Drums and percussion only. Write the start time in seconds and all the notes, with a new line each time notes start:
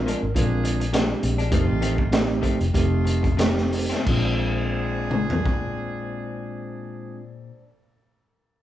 0.08 closed hi-hat
0.36 kick, closed hi-hat
0.65 closed hi-hat
0.81 closed hi-hat
0.94 snare, closed hi-hat
1.23 closed hi-hat
1.39 closed hi-hat
1.52 kick, closed hi-hat
1.82 closed hi-hat
1.98 kick
2.12 snare, closed hi-hat
2.43 kick, closed hi-hat
2.60 closed hi-hat
2.74 kick, closed hi-hat
3.07 closed hi-hat
3.24 kick, closed hi-hat
3.39 snare, closed hi-hat
3.57 snare
3.72 open hi-hat
3.91 snare, closed hi-hat
4.06 kick, crash
5.11 mid tom
5.30 floor tom
5.46 kick